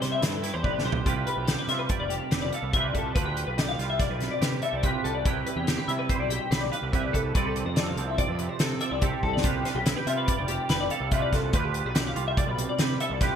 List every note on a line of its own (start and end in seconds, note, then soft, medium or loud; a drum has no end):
0.00 0.19 C3 medium
0.00 1.04 G3 medium
0.00 0.21 E4 medium
0.00 0.42 G4 medium
0.00 0.63 B4 medium
0.00 0.11 C5 medium
0.00 snare soft
0.00 closed hi-hat medium
0.12 0.22 E5 medium
0.22 0.51 G2 medium
0.22 0.42 E4 medium
0.22 0.33 C5 medium
0.22 snare loud
0.22 closed hi-hat medium
0.33 0.43 A4 medium
0.43 0.54 E4 medium
0.43 0.53 B4 medium
0.43 snare soft
0.43 closed hi-hat medium
0.54 0.63 E2 medium
0.54 0.84 G4 soft
0.54 0.63 C5 medium
0.64 0.83 A1 medium
0.64 1.04 C3 medium
0.64 1.04 B4 medium
0.64 0.85 D5 medium
0.64 kick medium
0.79 snare medium
0.84 1.04 B1 medium
0.84 1.04 G4 medium
0.84 1.06 C5 medium
0.92 floor tom medium
1.05 1.25 C2 medium
1.05 2.09 C3 medium
1.05 1.69 F4 medium
1.05 1.27 G4 medium
1.05 1.48 G4 medium
1.05 1.90 B4 medium
1.05 kick loud
1.05 closed hi-hat medium
1.27 1.38 B4 medium
1.27 closed hi-hat soft
1.37 1.56 B1 medium
1.37 1.58 G4 medium
1.48 2.32 G4 medium
1.48 snare loud
1.48 closed hi-hat medium
1.58 1.69 B4 medium
1.68 1.87 C3 medium
1.68 3.77 G3 medium
1.68 2.74 F4 medium
1.68 1.79 E5 medium
1.68 snare soft
1.68 closed hi-hat medium
1.79 2.00 B4 medium
1.89 2.54 D5 soft
1.89 kick medium
1.89 closed hi-hat medium
1.99 2.19 F1 medium
1.99 2.11 D5 medium
2.10 2.73 C3 medium
2.10 2.31 G4 medium
2.10 closed hi-hat medium
2.31 2.50 F1 medium
2.31 2.75 G4 medium
2.31 2.42 B4 medium
2.31 snare medium
2.31 closed hi-hat medium
2.42 2.52 D5 medium
2.52 2.74 A4 medium
2.52 2.73 F5 medium
2.52 closed hi-hat medium
2.63 2.91 C2 medium
2.73 3.13 C3 medium
2.73 3.14 F4 soft
2.73 3.16 G4 medium
2.73 3.17 B4 medium
2.73 2.84 E5 medium
2.73 kick medium
2.73 closed hi-hat medium
2.84 2.95 D5 medium
2.94 3.13 C2 medium
2.94 3.15 A4 medium
2.94 kick medium
2.94 closed hi-hat medium
3.15 3.44 D2 medium
3.15 3.78 F4 medium
3.15 3.57 G4 medium
3.15 3.26 B4 medium
3.15 3.99 B4 medium
3.15 kick loud
3.15 closed hi-hat medium
3.25 3.47 G4 medium
3.37 closed hi-hat medium
3.47 3.75 B1 medium
3.47 3.58 B4 medium
3.58 4.40 G4 medium
3.58 3.68 D5 medium
3.58 snare medium
3.58 closed hi-hat medium
3.69 3.89 F5 medium
3.78 4.07 C2 medium
3.78 5.87 G3 medium
3.78 4.83 F4 medium
3.78 snare soft
3.78 closed hi-hat soft
3.90 4.00 E5 medium
3.99 4.62 D5 medium
3.99 4.10 D5 medium
3.99 kick medium
3.99 snare soft
3.99 closed hi-hat medium
4.10 4.29 B1 medium
4.10 4.31 B4 medium
4.20 4.83 C3 medium
4.20 snare soft
4.20 closed hi-hat medium
4.31 4.42 D5 medium
4.41 4.60 C3 medium
4.41 4.83 G4 medium
4.41 4.63 B4 medium
4.41 snare medium
4.41 closed hi-hat medium
4.62 4.84 A4 medium
4.62 4.73 E5 medium
4.62 closed hi-hat medium
4.73 4.92 C2 medium
4.73 4.84 D5 medium
4.83 5.23 C3 medium
4.83 5.23 F4 medium
4.83 5.04 G4 medium
4.83 5.24 G4 medium
4.83 5.24 B4 medium
4.83 kick medium
4.83 closed hi-hat medium
5.04 5.23 C2 medium
5.04 5.15 A4 medium
5.04 closed hi-hat medium
5.15 5.25 D5 medium
5.25 5.44 C2 medium
5.25 6.92 C3 medium
5.25 5.87 E4 medium
5.25 5.46 G4 medium
5.25 5.67 G4 medium
5.25 6.09 B4 medium
5.25 kick loud
5.25 closed hi-hat medium
5.46 5.57 B4 medium
5.46 closed hi-hat medium
5.56 5.75 E2 medium
5.56 5.78 G4 medium
5.67 6.50 G4 medium
5.67 snare loud
5.67 closed hi-hat medium
5.78 5.88 B4 medium
5.88 6.07 C3 medium
5.88 6.28 G3 medium
5.88 6.92 E4 medium
5.88 5.99 E5 medium
5.88 closed hi-hat medium
5.99 6.19 B4 medium
6.09 6.72 C5 medium
6.09 kick medium
6.09 closed hi-hat medium
6.20 6.38 B1 medium
6.20 6.30 D5 medium
6.29 7.32 G3 medium
6.29 6.51 G4 medium
6.29 closed hi-hat medium
6.51 6.70 B1 medium
6.51 6.93 G4 medium
6.51 6.62 B4 medium
6.51 snare loud
6.51 closed hi-hat medium
6.61 6.71 D5 medium
6.72 6.93 B4 medium
6.72 6.92 F5 medium
6.72 closed hi-hat medium
6.82 7.11 C2 medium
6.92 7.32 C3 medium
6.92 7.33 E4 medium
6.92 7.33 G4 medium
6.92 7.33 B4 medium
6.92 7.04 E5 medium
6.92 kick medium
6.92 closed hi-hat medium
7.04 7.14 D5 medium
7.13 7.33 C2 medium
7.13 7.34 A4 medium
7.13 kick medium
7.13 closed hi-hat medium
7.35 7.63 C2 medium
7.35 7.98 C3 medium
7.35 7.97 C4 medium
7.35 7.76 A4 medium
7.35 7.46 B4 medium
7.35 8.19 D5 medium
7.35 kick loud
7.35 closed hi-hat medium
7.46 7.66 A4 medium
7.56 closed hi-hat soft
7.65 7.94 F2 medium
7.65 7.77 C5 medium
7.76 8.59 A4 medium
7.76 7.87 D5 medium
7.76 snare loud
7.76 closed hi-hat medium
7.87 8.07 F5 medium
7.96 8.25 C2 medium
7.96 9.47 F3 medium
7.96 9.01 C4 medium
7.96 closed hi-hat medium
8.07 8.18 E5 medium
8.18 8.29 D5 medium
8.18 8.81 D5 medium
8.18 kick medium
8.18 closed hi-hat medium
8.29 8.48 F2 medium
8.29 8.49 B4 medium
8.39 9.00 C3 medium
8.39 closed hi-hat medium
8.49 8.60 C5 medium
8.59 8.79 C3 medium
8.59 8.81 A4 medium
8.59 9.02 A4 medium
8.59 snare loud
8.59 closed hi-hat medium
8.81 9.03 D5 medium
8.81 8.92 E5 medium
8.81 closed hi-hat medium
8.91 9.10 C2 medium
8.91 9.02 D5 medium
9.02 9.41 C3 medium
9.02 9.44 C4 medium
9.02 9.23 G4 medium
9.02 9.42 A4 medium
9.02 9.45 D5 medium
9.02 kick medium
9.02 closed hi-hat medium
9.23 9.42 C2 medium
9.23 9.34 A4 medium
9.23 kick medium
9.33 9.44 D5 medium
9.33 snare medium
9.43 9.63 C2 medium
9.43 10.48 C3 medium
9.43 10.07 F4 medium
9.43 9.65 G4 medium
9.43 9.85 G4 medium
9.43 10.28 B4 medium
9.43 kick medium
9.43 closed hi-hat medium
9.65 9.76 B4 medium
9.65 snare soft
9.65 closed hi-hat medium
9.75 9.94 B1 medium
9.75 9.97 G4 medium
9.85 9.96 E4 medium
9.85 snare loud
9.85 closed hi-hat medium
9.96 10.69 G4 soft
9.96 10.07 B4 medium
10.07 10.26 C3 medium
10.07 12.15 G3 medium
10.07 11.11 F4 medium
10.07 10.17 E5 medium
10.07 closed hi-hat medium
10.17 10.38 B4 medium
10.28 10.91 D5 medium
10.28 kick medium
10.28 closed hi-hat medium
10.38 10.57 F1 medium
10.38 10.49 D5 medium
10.48 11.10 C3 medium
10.48 10.70 G4 medium
10.48 closed hi-hat medium
10.69 10.88 F1 medium
10.69 11.13 G4 medium
10.69 10.80 B4 medium
10.69 snare loud
10.69 closed hi-hat medium
10.80 10.91 D5 medium
10.90 11.12 A4 medium
10.90 11.12 F5 medium
10.90 closed hi-hat medium
11.00 11.29 C2 medium
11.11 11.51 C3 medium
11.11 11.51 F4 medium
11.11 11.54 G4 medium
11.11 11.55 B4 medium
11.11 11.22 E5 medium
11.11 kick medium
11.11 closed hi-hat medium
11.22 11.33 D5 medium
11.32 11.51 C2 medium
11.32 11.54 A4 medium
11.32 kick medium
11.32 snare soft
11.32 closed hi-hat medium
11.53 11.82 D2 medium
11.53 12.14 F4 medium
11.53 11.94 G4 medium
11.53 11.65 B4 medium
11.53 12.37 B4 medium
11.53 kick loud
11.53 closed hi-hat medium
11.65 11.86 G4 medium
11.74 closed hi-hat medium
11.85 12.13 B1 medium
11.85 11.96 B4 medium
11.94 12.79 G4 medium
11.94 12.07 D5 medium
11.94 snare loud
11.94 closed hi-hat medium
12.07 12.27 F5 medium
12.15 12.44 C2 medium
12.15 13.36 G3 medium
12.15 13.20 F4 medium
12.15 closed hi-hat medium
12.28 12.38 E5 medium
12.37 13.00 D5 medium
12.37 12.49 D5 medium
12.37 kick medium
12.37 closed hi-hat medium
12.47 12.66 B1 medium
12.47 12.69 B4 medium
12.58 13.20 C3 medium
12.58 closed hi-hat medium
12.69 12.80 D5 medium
12.79 12.98 C3 medium
12.79 13.21 G4 medium
12.79 13.00 B4 medium
12.79 snare loud
12.79 closed hi-hat medium
13.00 13.21 A4 medium
13.00 13.11 E5 medium
13.00 closed hi-hat medium
13.10 13.29 C2 medium
13.10 13.21 D5 medium
13.21 13.36 C3 medium
13.21 13.36 F4 medium
13.21 13.36 G4 medium
13.21 13.36 B4 medium
13.21 kick medium
13.21 snare soft
13.21 closed hi-hat medium